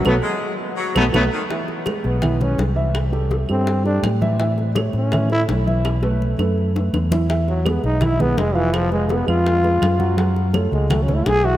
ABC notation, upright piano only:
X:1
M:4/4
L:1/8
Q:1/4=166
K:E
V:1 name="Upright piano"
[FAB] z4 [FAB] [FAB] z | [E,Ee]2 [G,GB]2 [E,Ee] [G,GB]2 [E,Ee]- | [E,Ee] [=G,=GA]2 [G,GA]2 [G,GA]2 [E,Ee] | [E,Ee]2 [A,Ac]2 [E,Ee] [A,Ac]2 [E,Ee]- |
[E,Ee] [A,AB]2 [A,AB]2 [A,AB]2 [E,Ee] | [E,Ee]2 [G,GB]2 [E,Ee] [G,GB]2 [=F,=F=f]- | [=F,=F=f] [_A,_A_c]2 [A,Ac]2 [A,Ac]2 [^F,^F^f] | [F,Ff]2 [A,Ac]2 [F,Ff] [A,Ac]2 [E,Ee] |]